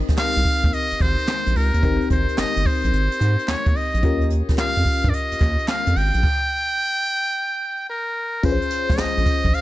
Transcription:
Already playing: C4 D#4 G4 A#4
0.09 kick, snare, closed hi-hat
0.18 F5, snare, clap
0.36 C2, closed hi-hat
0.45 kick, open hi-hat
0.64 D#2, kick, closed hi-hat
0.73 D#5, closed hi-hat
0.91 G#1, closed hi-hat
1.00 G#1 C5, kick, clap, closed hi-hat
1.19 closed hi-hat
1.28 snare, clap
1.46 A#1, closed hi-hat
1.55 C#2 A#4, open hi-hat
1.74 D#2, closed hi-hat
1.82 G#1 C4 D#4 G4 A#4, kick, closed hi-hat
2.01 closed hi-hat
2.10 G#1 C5, kick, closed hi-hat
2.29 closed hi-hat
2.38 G1 D#5, snare, clap
2.56 G1, closed hi-hat
2.65 C5, kick, open hi-hat
2.84 A#1, closed hi-hat
2.93 G#1, closed hi-hat
3.12 closed hi-hat
3.20 G#2, clap, closed hi-hat
3.39 closed hi-hat
3.48 D#2 C#5, snare, clap
3.66 D#2, kick, closed hi-hat
3.76 D#5, open hi-hat
3.94 A#1, closed hi-hat
4.03 D#2 C#4 F4 G4 A#4, kick, closed hi-hat
4.21 closed hi-hat
4.30 closed hi-hat
4.49 kick, snare, closed hi-hat
4.58 F5, snare, clap
4.76 F2, closed hi-hat
4.85 kick, open hi-hat
5.04 G2, kick, closed hi-hat
5.09 D5, closed hi-hat
5.14 D#5
5.32 D#2, closed hi-hat
5.40 D#2, kick, clap, closed hi-hat
5.59 closed hi-hat
5.68 F5, snare, clap
5.86 F2, closed hi-hat
5.96 G#1 G5, open hi-hat
6.14 A#1, closed hi-hat
6.23 kick, crash
7.89 A#4
8.43 A#1 C#4 F4 G#4 B4 C5, kick, closed hi-hat, tambourine
8.52 C5
8.62 closed hi-hat
8.71 closed hi-hat, tambourine
8.89 C#2, kick, snare, closed hi-hat
8.98 A#1 D#5, snare, clap, tambourine
9.17 A#1, closed hi-hat
9.26 kick, open hi-hat, tambourine
9.44 A#1, kick, closed hi-hat
9.54 F5, closed hi-hat

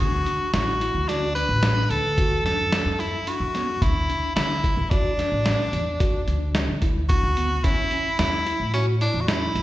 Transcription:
0.00 D2 D4 F#4
0.26 D4, closed hi-hat
0.53 A1 E4 F#4, snare, closed hi-hat
0.81 E4, closed hi-hat
0.95 D2
1.09 D4 F#4, snare, closed hi-hat
1.36 D4 B4, closed hi-hat
1.49 A1
1.63 D4, snare, closed hi-hat
1.90 D2 A4, closed hi-hat
2.18 F#4, kick, closed hi-hat
2.45 F#2 D4 A4, snare, closed hi-hat
2.72 snare, closed hi-hat
2.85 F#2
3.00 E4, closed hi-hat
3.27 D4 F#4, closed hi-hat
3.40 F#2
3.55 B3, snare, closed hi-hat
3.82 D2 D4 E4, kick, closed hi-hat
4.09 D4, closed hi-hat
4.36 D3 E4, snare, closed hi-hat
4.64 E4, kick, closed hi-hat
4.77 E2
4.91 D4 F#4, kick, closed hi-hat
5.19 D4, snare, closed hi-hat
5.32 A1
5.46 D4, snare, closed hi-hat
5.73 E2, closed hi-hat
6.00 F#4, kick, closed hi-hat
6.28 D2 D4, closed hi-hat
6.55 snare, closed hi-hat
6.68 D2
6.82 E4, kick, closed hi-hat
7.09 D4 F#4, kick, closed hi-hat
7.23 D2
7.37 B3, closed hi-hat
7.64 F#2 C#4 E4, kick, closed hi-hat
7.91 C#4, closed hi-hat
8.19 E2 E4, snare, closed hi-hat
8.46 E4, closed hi-hat
8.60 A2
8.74 C#4 F#4, closed hi-hat
9.01 D4 E4, closed hi-hat
9.14 E2
9.21 F#4
9.28 E4, snare, closed hi-hat
9.55 F#2, closed hi-hat

